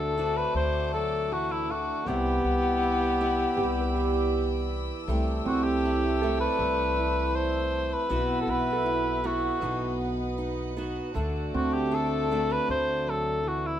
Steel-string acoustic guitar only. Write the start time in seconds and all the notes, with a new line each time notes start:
Already playing: D3 C4 D4 F#4
0.18 C4 D4 F#4
0.94 F#3
1.32 E3
1.69 D3
2.07 C3 B3 E4
2.83 E4
3.21 B3 E4
3.95 E3
5.07 C3 A3 E4 G4
5.85 E4
6.23 A3 E4
6.97 E3
8.09 B2 B3 E4 F#4
8.86 E4
9.24 B3 E4
9.61 B2 B3 D#4
10.38 D#4
10.77 B3 D#4 F#4
11.14 D3 A3 D4 F#4
11.91 D4
12.31 A3 D4 F#4
13.06 F#3
13.43 E3